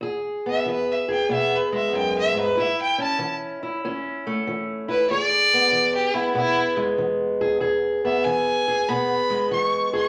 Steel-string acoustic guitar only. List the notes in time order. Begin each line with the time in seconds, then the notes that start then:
0.01 E2 G#4
0.46 B3
0.66 E3
1.08 G#4
1.29 B2 B3
1.72 G#3
1.93 F#2
2.34 G#2
2.55 A2 E4
2.98 C#4
3.19 E3
3.63 E4
3.85 E2 C#4
4.27 A3
4.47 E3
4.88 E4
5.10 E2 G#4
5.53 B3
5.72 E3
6.14 B3
6.34 B2 B3
6.77 G#3
6.98 E3
7.41 G#4
7.60 E2 G#4
8.05 B3
8.26 E3
8.68 G#4
8.89 B2 B3
9.30 G#3
9.51 E3
9.93 G#4